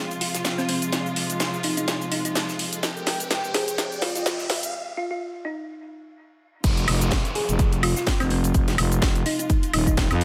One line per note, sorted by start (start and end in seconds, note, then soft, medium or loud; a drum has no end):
0.00 4.70 C3 medium
0.00 4.70 F3 medium
0.00 4.70 G#3 medium
0.00 2.79 F4 medium
0.00 riser medium
0.11 ride soft
0.11 shaker soft
0.21 0.30 F4 medium
0.21 open hi-hat loud
0.21 ride medium
0.34 0.41 F4 medium
0.34 snare soft
0.34 closed hi-hat medium
0.34 shaker medium
0.45 snare loud
0.45 snare medium
0.45 closed hi-hat medium
0.45 ride medium
0.45 shaker medium
0.58 0.65 C4 medium
0.58 snare soft
0.58 shaker soft
0.69 0.77 C4 medium
0.69 open hi-hat loud
0.69 ride medium
0.82 closed hi-hat medium
0.82 shaker medium
0.92 snare medium
0.92 closed hi-hat soft
0.92 ride medium
0.92 shaker medium
1.06 shaker soft
1.16 snare soft
1.16 open hi-hat loud
1.16 ride medium
1.30 closed hi-hat medium
1.30 shaker medium
1.40 snare medium
1.40 snare loud
1.40 closed hi-hat medium
1.40 ride medium
1.40 shaker medium
1.54 shaker soft
1.63 1.73 D#4 medium
1.63 open hi-hat loud
1.63 ride medium
1.77 1.84 D#4 medium
1.77 closed hi-hat medium
1.77 shaker medium
1.88 snare medium
1.88 closed hi-hat soft
1.88 ride medium
1.88 shaker medium
2.01 ride soft
2.01 shaker soft
2.12 2.20 D#4 medium
2.12 open hi-hat loud
2.12 ride medium
2.25 2.32 D#4 medium
2.25 closed hi-hat medium
2.25 shaker medium
2.35 snare medium
2.35 snare loud
2.35 closed hi-hat medium
2.35 ride medium
2.35 shaker medium
2.49 snare soft
2.49 shaker soft
2.59 open hi-hat loud
2.59 ride medium
2.73 closed hi-hat medium
2.73 shaker medium
2.83 4.72 G4 medium
2.83 snare medium
2.83 closed hi-hat medium
2.83 ride medium
2.83 shaker medium
2.97 shaker soft
3.06 snare soft
3.06 snare medium
3.06 open hi-hat loud
3.06 ride medium
3.20 closed hi-hat medium
3.20 shaker medium
3.31 snare medium
3.31 snare loud
3.31 closed hi-hat soft
3.31 ride medium
3.31 shaker soft
3.44 shaker soft
3.54 3.68 G#4 loud
3.54 snare medium
3.54 open hi-hat loud
3.54 ride medium
3.68 closed hi-hat medium
3.68 ride soft
3.68 shaker medium
3.78 snare medium
3.78 closed hi-hat soft
3.78 ride medium
3.78 shaker medium
3.92 ride soft
3.92 shaker soft
4.01 4.11 F4 medium
4.01 snare medium
4.01 open hi-hat loud
4.01 ride medium
4.15 4.22 F4 medium
4.15 snare medium
4.15 closed hi-hat medium
4.15 shaker medium
4.26 snare medium
4.26 snare loud
4.26 closed hi-hat soft
4.26 ride medium
4.26 shaker soft
4.39 snare medium
4.39 shaker soft
4.49 snare medium
4.49 open hi-hat loud
4.49 ride medium
4.63 closed hi-hat medium
4.63 shaker medium
4.97 5.06 F4 medium
5.11 5.17 F4 medium
5.45 6.12 D#4 medium
6.64 6.86 F1 medium
6.64 10.24 C3 medium
6.64 10.24 F3 medium
6.64 10.24 G#3 medium
6.64 10.24 F4 medium
6.64 kick loud
6.64 closed hi-hat medium
6.64 crash loud
6.64 ride medium
6.64 downlifter medium
6.64 shaker medium
6.77 closed hi-hat medium
6.77 shaker soft
6.88 7.23 F1 medium
6.88 snare soft
6.88 open hi-hat loud
6.88 ride medium
6.88 high woodblock medium
7.01 closed hi-hat soft
7.01 shaker medium
7.11 kick loud
7.11 snare loud
7.11 closed hi-hat medium
7.11 ride medium
7.11 shaker medium
7.25 closed hi-hat medium
7.25 shaker soft
7.35 7.49 G#4 medium
7.35 open hi-hat loud
7.35 ride medium
7.49 7.94 F1 medium
7.49 closed hi-hat soft
7.49 ride soft
7.49 shaker medium
7.59 kick loud
7.59 closed hi-hat medium
7.59 ride medium
7.59 shaker medium
7.72 closed hi-hat medium
7.72 ride soft
7.72 shaker soft
7.83 7.92 F4 medium
7.83 open hi-hat loud
7.83 ride medium
7.83 high woodblock medium
7.96 8.03 F4 medium
7.96 snare medium
7.96 closed hi-hat soft
7.96 shaker medium
8.07 kick loud
8.07 snare loud
8.07 closed hi-hat medium
8.07 ride loud
8.07 shaker medium
8.20 8.53 F1 loud
8.20 8.27 C4 medium
8.20 snare medium
8.20 closed hi-hat medium
8.20 high woodblock medium
8.20 shaker soft
8.30 8.39 C4 medium
8.30 open hi-hat medium
8.30 ride medium
8.44 closed hi-hat soft
8.44 shaker medium
8.54 8.77 F1 medium
8.54 kick loud
8.54 closed hi-hat medium
8.54 ride medium
8.54 shaker medium
8.68 snare soft
8.68 closed hi-hat medium
8.68 shaker soft
8.78 9.00 F1 loud
8.78 snare medium
8.78 open hi-hat loud
8.78 ride medium
8.78 high woodblock medium
8.92 closed hi-hat soft
8.92 shaker medium
9.02 9.24 F1 loud
9.02 kick loud
9.02 snare loud
9.02 closed hi-hat medium
9.02 ride medium
9.02 shaker medium
9.15 closed hi-hat medium
9.15 shaker soft
9.26 9.34 D#4 medium
9.26 open hi-hat loud
9.26 ride medium
9.39 9.46 D#4 medium
9.39 closed hi-hat soft
9.39 shaker medium
9.50 kick loud
9.50 closed hi-hat medium
9.50 ride medium
9.50 shaker medium
9.63 closed hi-hat medium
9.63 ride soft
9.63 shaker soft
9.73 9.96 D#1 medium
9.73 9.82 D#4 medium
9.73 open hi-hat loud
9.73 ride medium
9.73 high woodblock medium
9.87 9.94 D#4 medium
9.87 kick medium
9.87 closed hi-hat soft
9.87 shaker medium
9.97 10.09 D#1 loud
9.97 kick loud
9.97 snare loud
9.97 closed hi-hat medium
9.97 ride medium
9.97 shaker medium
10.10 10.24 F2 loud
10.10 snare medium
10.10 closed hi-hat medium
10.10 high woodblock medium
10.10 shaker soft
10.21 open hi-hat loud
10.21 ride medium